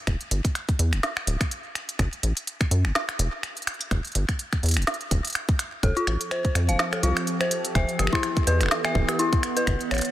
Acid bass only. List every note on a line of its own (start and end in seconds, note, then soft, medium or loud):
0.07 0.17 E1 loud
0.31 0.41 G1 medium
0.79 0.94 E2 loud
0.93 1.00 E1 medium
1.27 1.37 D1 medium
1.99 2.09 F#1 loud
2.23 2.33 A1 medium
2.71 2.86 F#2 loud
2.85 2.92 F#1 medium
3.19 3.29 E1 loud
3.91 4.01 E1 loud
4.15 4.25 G1 medium
4.63 4.78 E2 loud
4.77 4.84 E1 medium
5.11 5.21 D1 loud
5.83 5.93 F1 loud
6.07 6.17 A1 medium
6.55 6.70 F2 loud
6.69 6.76 F1 medium
7.03 7.13 C2 loud
7.75 7.85 E1 loud
7.99 8.09 G1 medium
8.47 8.62 E2 loud
8.61 8.68 E1 medium
8.95 9.05 D1 loud
9.67 9.77 F#1 medium
9.91 10.01 A1 medium